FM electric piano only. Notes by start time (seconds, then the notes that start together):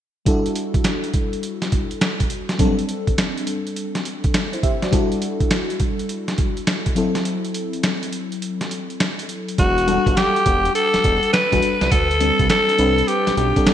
0.25 G3 D4 E4 F#4 A4
2.58 F#3 C4 D4 A4
2.65 G3
4.53 E4 C5
4.63 G4 E5
4.82 F#4 D5
4.91 G3 D4 E4 F#4 A4
6.95 F#3 C4 E4 A4
9.87 G3 D4 A4 F#5
11.52 G3 D4 F#4 A4
12.20 G3 C4 D4 A4
12.78 G3 C4 D4 B4
13.56 G3 C4 D4 A4
13.66 G3 C4 D4 A4